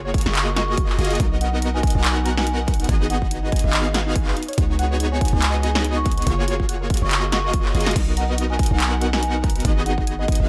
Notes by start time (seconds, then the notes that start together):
Already playing: F#1 A#3 F4 F#4 G#4 C#5
0.05 C#5
0.14 F4, kick, closed hi-hat
0.18 closed hi-hat
0.21 closed hi-hat
0.26 F#1 A#3 F4 F#4 G#4 D#5 C#6, snare
0.35 F4 C#6, clap, closed hi-hat
0.47 A#4
0.56 F4 C#6, snare, closed hi-hat
0.68 F#4 C#6
0.77 F#4, kick, closed hi-hat
0.89 F4, clap
0.99 F#1 A#3 F4 F#4 G#4 D#5, closed hi-hat
1.05 closed hi-hat
1.11 F#5, closed hi-hat
1.15 closed hi-hat
1.20 B1 B3 D#4 D#5, kick, closed hi-hat
1.32 D#5
1.41 D#4 F#5, closed hi-hat
1.53 D#4
1.62 A#5, closed hi-hat
1.74 B4 G#5
1.83 D#4, kick, closed hi-hat
1.87 closed hi-hat
1.90 closed hi-hat
1.95 B1 B3 D#4 F#4 A#4 D#5 F#5 G#5
2.04 D#4 G#5, clap, closed hi-hat
2.16 D#4
2.25 A#5, closed hi-hat
2.37 B4 G#5, snare
2.47 D#4 G#5, closed hi-hat
2.59 D#5
2.68 D#4, kick, closed hi-hat
2.74 closed hi-hat
2.80 D#4, closed hi-hat
2.84 closed hi-hat
2.89 G#1 B3 D#4 F#4 G#4 D#5 G#5, kick, closed hi-hat
3.01 B4
3.10 D#4 F#5, closed hi-hat
3.22 D#5, kick
3.31 D#4, closed hi-hat
3.43 D#4 D#5
3.52 G#5, kick, closed hi-hat
3.56 closed hi-hat
3.59 closed hi-hat
3.64 G#1 B3 D#4 F#4 G#4 B4 D#5 F5
3.73 D#4, clap, closed hi-hat
3.85 D#5
3.94 D#4, snare, closed hi-hat
4.06 D#4
4.16 G#5, kick, closed hi-hat
4.27 B4, clap
4.37 D#4, closed hi-hat
4.43 closed hi-hat
4.49 C#5, closed hi-hat
4.53 closed hi-hat
4.58 C#2 B3 D#4 F#4 G#4 C#5, kick, closed hi-hat
4.70 D#4
4.79 F#5, closed hi-hat
4.91 B4
5.00 D#4, closed hi-hat
5.12 C#5 G#5
5.21 D#4, kick, closed hi-hat
5.25 closed hi-hat
5.28 closed hi-hat
5.33 C#2 B3 D#4 F#4 G#4 D#5 G#5
5.42 F#5 G#5, clap, closed hi-hat
5.54 B4
5.63 D#4 G#5, closed hi-hat
5.75 C#5, snare
5.85 D#4, closed hi-hat
5.96 D#4 C#6
6.05 F#5, kick, closed hi-hat
6.12 closed hi-hat
6.17 B4 C#6, closed hi-hat
6.22 closed hi-hat
6.27 F#1 A#3 F4 F#4 G#4 C#5, kick, closed hi-hat
6.38 C#5
6.48 F4, closed hi-hat
6.59 F4, kick
6.69 F#5, closed hi-hat
6.81 A#4
6.90 F4, kick, closed hi-hat
6.94 closed hi-hat
6.97 closed hi-hat
7.02 F#1 A#3 F4 F#4 G#4 C#5 D#5 C#6
7.11 F4 C#6, clap, closed hi-hat
7.23 F4
7.32 F#5 C#6, snare, closed hi-hat
7.44 A#4 C#6
7.54 F4, kick, closed hi-hat
7.65 C#5, clap
7.75 F#1 A#3 F4 F#4 G#4 D#5, closed hi-hat
7.81 closed hi-hat
7.86 F4, snare, closed hi-hat
7.91 closed hi-hat
7.96 B1 B3 D#4 D#5, kick, closed hi-hat, crash
8.08 D#4
8.17 F#5 A#5, closed hi-hat
8.29 B4
8.38 D#4, closed hi-hat
8.50 D#5 G#5
8.59 D#4, kick, closed hi-hat
8.63 closed hi-hat
8.66 closed hi-hat
8.71 B1 B3 D#4 F#4 A#4 F#5 G#5
8.80 G#5 A#5, clap, closed hi-hat
8.92 B4
9.01 D#4, closed hi-hat
9.13 D#5 G#5, snare
9.23 D#4 G#5, closed hi-hat
9.34 D#4
9.44 A#5, kick, closed hi-hat
9.50 closed hi-hat
9.56 B4, closed hi-hat
9.60 closed hi-hat
9.65 G#1 B3 D#4 F#4 G#4 D#5, kick, closed hi-hat
9.77 D#5
9.86 D#4 F#5, closed hi-hat
9.98 D#4, kick
10.07 G#5, closed hi-hat
10.19 B4 D#5
10.28 D#4, kick, closed hi-hat
10.32 closed hi-hat
10.35 closed hi-hat
10.40 G#1 B3 D#4 F#4 G#4 D#5 F5